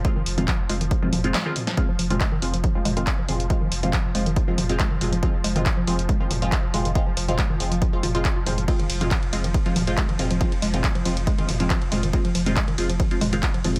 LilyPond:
<<
  \new Staff \with { instrumentName = "Synth stab" } { \time 4/4 \key f \minor \tempo 4 = 139 <aes c' f'>16 r8 <aes c' f'>16 r8 <aes c' f'>16 r8 <aes c' f'>16 r16 <aes c' f'>16 r16 <aes c' f'>16 r8 | <aes c' f'>16 r8 <aes c' f'>16 r8 <aes c' f'>16 r8 <aes c' f'>16 r16 <aes c' f'>8 r16 <aes c' f'>8 | <aes c' f'>16 r8 <aes c' f'>16 r8 <aes c' f'>16 r8 <aes c' f'>16 r16 <aes c' f'>8 r16 <aes c' f'>8 | <aes c' f'>16 r8 <aes c' f'>16 r8 <aes c' f'>16 r8 <aes c' f'>16 r16 <aes c' f'>8 r16 <aes c' f'>8 |
<aes c' f'>16 r8 <aes c' f'>16 r8 <aes c' f'>16 r8 <aes c' f'>16 r16 <aes c' f'>8 r16 <aes c' f'>8 | <aes c' f'>16 r8 <aes c' f'>16 r8 <aes c' f'>16 r8 <aes c' f'>16 r16 <aes c' f'>8 r16 <aes c' f'>8 | <aes c' f'>16 r8 <aes c' f'>16 r8 <aes c' f'>16 r8 <aes c' f'>16 r16 <aes c' f'>8 r16 <aes c' f'>8 | <aes c' f'>16 r8 <aes c' f'>16 r8 <aes c' f'>16 r8 <aes c' f'>16 r16 <aes c' f'>8 r16 <aes c' f'>8 | }
  \new Staff \with { instrumentName = "Synth arpeggio sound" } { \clef bass \time 4/4 \key f \minor aes16 ees16 r16 f16 f16 r16 aes16 ees16 r16 f16 f16 r16 aes16 ees16 r16 f16 | r16 f16 f16 r16 aes16 ees16 r16 f16 f16 r16 aes16 ees16 r16 f16 f16 r16 | aes16 ees16 r16 f16 f16 r16 aes16 ees16 r16 f16 f16 r16 aes16 ees16 r16 f16 | f16 r16 aes16 ees16 r16 f16 f16 r16 aes16 ees16 r16 f16 f16 r16 aes16 ees16 |
r16 f16 f16 r16 aes16 ees16 r16 f16 f16 r16 f'16 f'16 r16 f'16 f16 f16 | aes16 ees16 r16 f16 f16 r16 aes16 ees16 r16 f16 f16 r16 aes16 ees16 r16 f16 | f16 r16 aes16 ees16 r16 f16 f16 r16 aes16 ees16 r16 f16 f16 r16 aes16 ees16 | r16 f16 f16 r16 aes16 ees16 r16 f16 f16 r16 aes16 ees16 r16 f16 f16 r16 | }
  \new Staff \with { instrumentName = "Synth drone" } { \clef bass \time 4/4 \key f \minor f1 | f1~ | f1~ | f1~ |
f1~ | f1~ | f1~ | f1 | }
  \new Staff \with { instrumentName = "Sub bass" } { \clef bass \time 4/4 \key f \minor r16 f,,16 f,,16 f,,16 r16 f,,16 f,,16 f,,16 r16 f,,16 f,,16 f,,16 r4 | r16 f,,16 f,,16 f,,16 r16 f,,16 f,,16 f,,16 r16 f,,16 f,,16 f,,16 r16 f,,16 f,,16 f,,16 | r16 f,,16 f,,16 f,,16 r16 f,,16 f,,16 f,,16 r16 f,,16 f,,16 f,,16 r16 f,,16 f,,16 f,,16 | r16 f,,16 f,,16 f,,16 r16 f,,16 f,,16 f,,16 r16 f,,16 f,,16 f,,16 r16 f,,16 f,,16 f,,16 |
r16 f,,16 f,,16 f,,16 r16 f,,16 f,,16 f,,16 r16 f,,16 f,,16 f,,16 r16 f,,16 f,,16 f,,16 | r16 f,,16 f,,16 f,,16 r16 f,,16 f,,16 f,,16 r16 f,,16 f,,16 f,,16 r16 f,,16 f,,16 f,,16 | r16 f,,16 f,,16 f,,16 r16 f,,16 f,,16 f,,16 r16 f,,16 f,,16 f,,16 r16 f,,16 f,,16 f,,16 | r16 f,,16 f,,16 f,,16 r16 f,,16 f,,16 f,,16 r16 f,,16 f,,16 f,,16 r16 f,,16 f,,16 f,,16 | }
  \new DrumStaff \with { instrumentName = "Drums" } \drummode { \time 4/4 <hh bd>8 hho16 <hh toml>16 <hc hh bd>8 hho16 hh16 <hh bd>16 toml16 <hho toml>16 hh16 <hc hh sn>8 <hho toml>16 <hh sn>16 | <hh bd>8 hho16 <hh toml>16 <hc hh bd>8 hho16 hh16 <hh bd>8 <hho toml>16 hh16 <hc hh bd>8 <hho toml>16 hh16 | <hh bd>8 hho16 <hh toml>16 <hc hh bd>8 hho16 hh16 <hh bd>8 <hho toml>16 hh16 <hc hh bd>8 <hho toml>16 hh16 | <hh bd>8 hho16 <hh toml>16 <hc hh bd>8 hho16 hh16 <hh bd>8 <hho toml>16 hh16 <hc hh bd>8 <hho toml>16 hh16 |
<hh bd>8 hho16 <hh toml>16 <hc hh bd>8 hho16 hh16 <hh bd>8 <hho toml>16 hh16 <hc hh bd>8 <hho toml>16 hh16 | <hh bd cymr>16 cymr16 <hho cymr>16 <hh cymr toml>16 <hc hh bd cymr>16 cymr16 <hho cymr>16 <hh cymr>16 <hh bd cymr>16 cymr16 <hho cymr toml>16 <hh cymr>16 <hc hh bd cymr>16 cymr16 <hho cymr toml>16 <hh cymr>16 | <hh bd cymr>16 cymr16 <hho cymr>16 <hh cymr toml>16 <hc hh bd cymr>16 cymr16 <hho cymr>16 <hh cymr>16 <hh bd cymr>16 cymr16 <hho cymr toml>16 <hh cymr>16 <hc hh bd cymr>16 cymr16 <hho cymr toml>16 <hh cymr>16 | <hh bd cymr>16 cymr16 <hho cymr>16 <hh cymr toml>16 <hc hh bd cymr>16 cymr16 <hho cymr>16 <hh cymr>16 <hh bd cymr>16 cymr16 <hho cymr toml>16 <hh cymr>16 <hc hh bd cymr>16 cymr16 <hho cymr toml>16 <hh cymr>16 | }
>>